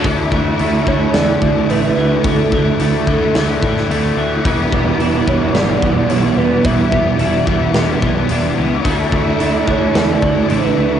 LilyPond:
<<
  \new Staff \with { instrumentName = "Soft synth lead" } { \time 4/4 \key e \dorian \tempo 4 = 109 r4. cis''8 d''4 b'4 | a'2 r2 | r4. cis''8 d''8 d''8 cis''8 b'8 | e''2 r2 |
r4. cis''8 d''4 b'4 | }
  \new Staff \with { instrumentName = "Overdriven electric guitar" } { \time 4/4 \key e \dorian <d a d' e'>4 <d a d' e'>8 <a d' e'>8 <d a d' e'>4 <d a d' e'>4 | <d a d' e'>4 <d a d' e'>8 <a d' e'>8 <d a d' e'>4 <d a d' e'>4 | <e, b, e g b e'>4 <e g b e'>8 <e g b e'>8 <e, b, e g b e'>4 <e g b e'>4 | <e, b, e g b e'>4 <e g b e'>8 <e g b e'>8 <e, b, e g b e'>4 <e g b e'>4 |
<d a d' e'>4 <d a d' e'>8 <a d' e'>8 <d a d' e'>4 <d a d' e'>4 | }
  \new Staff \with { instrumentName = "Overdriven electric guitar" } { \time 4/4 \key e \dorian <d a d' e'>1~ | <d a d' e'>1 | <e, b, e g b e'>1~ | <e, b, e g b e'>1 |
<d a d' e'>1 | }
  \new Staff \with { instrumentName = "Clean electric guitar" } { \clef bass \time 4/4 \key e \dorian e8 e8 a8 e8 e8 e8 a8 e8 | e8 e8 a8 e8 e8 e8 a8 e8 | e8 b8 d'8 e8 b8 e8 d'8 b8 | e8 b8 d'8 e8 b8 e8 d'8 b8 |
e8 a8 d'8 e8 a8 e8 d'8 a8 | }
  \new Staff \with { instrumentName = "Picked electric bass" } { \clef bass \time 4/4 \key e \dorian d,8 d,8 d,8 d,8 e,8 d,8 a,,8 d,8 | d,8 d,8 d,8 d,8 d,8 a,8 d,8 d,8 | e,,8 e,,8 e,,8 e,,8 g,,8 e,,8 b,,8 e,,8 | e,,8 e,,8 e,,8 e,,8 e,,8 b,,8 e,,8 cis,8 |
d,8 d,8 d,8 d,8 e,8 d,8 a,,8 d,8 | }
  \new DrumStaff \with { instrumentName = "Drums" } \drummode { \time 4/4 <hho bd>8 bd8 hho8 bd8 <hho sn>8 bd8 hho4 | <hho bd>8 bd8 hho8 bd8 <hho sn>8 bd16 sn16 hho4 | <hho bd>8 bd8 hho8 bd8 <hho sn>8 bd8 hho4 | <hho bd>8 bd8 hho8 bd8 <hho sn>8 bd8 hho4 |
<hho bd>8 bd8 hho8 bd8 <hho sn>8 bd8 hho4 | }
>>